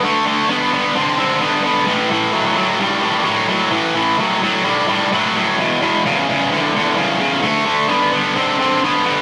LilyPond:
\new Staff \with { instrumentName = "Distorted electric guitar" } { \clef bass \time 4/4 \key d \major \tempo 4 = 130 <d a>8 <d a>8 <d b>8 <d b>8 <d c'>8 <d c'>8 <d b>8 <d b>8 | <a, e>8 <a, e>8 <a, fis>8 <a, fis>8 <a, g>8 <a, g>8 <a, fis>8 <a, fis>8 | <a, e>8 <a, e>8 <a, fis>8 <a, fis>8 <a, g>8 <a, g>8 <a, fis>8 <a, fis>8 | <e, b,>8 <e, b,>8 <e, cis>8 <e, cis>8 <e, d>8 <e, d>8 <e, cis>8 <e, cis>8 |
<d a>8 <d a>8 <d b>8 <d b>8 <d c'>8 <d c'>8 <d b>8 <d b>8 | }